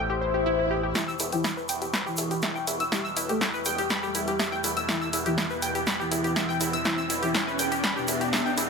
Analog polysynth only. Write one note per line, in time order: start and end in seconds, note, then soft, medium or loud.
0.09 0.86 C5 loud
0.95 1.15 E3 medium
0.95 1.15 E4 medium
1.32 1.52 E3 medium
1.32 1.52 E4 medium
2.06 2.83 E3 medium
2.06 2.83 E4 loud
2.92 3.11 G3 medium
2.92 3.11 G4 loud
3.29 3.48 A3 medium
3.29 3.48 A4 loud
4.03 4.79 G3 medium
4.03 4.79 G4 loud
4.89 5.08 E3 medium
4.89 5.08 E4 loud
5.26 5.45 E3 medium
5.26 5.45 E4 loud
6.00 6.76 E3 medium
6.00 6.76 E4 loud
6.85 7.05 E3 medium
6.85 7.05 E4 loud
7.23 7.42 E3 medium
7.23 7.42 E4 medium
7.96 8.70 B2 medium
7.96 8.70 B3 loud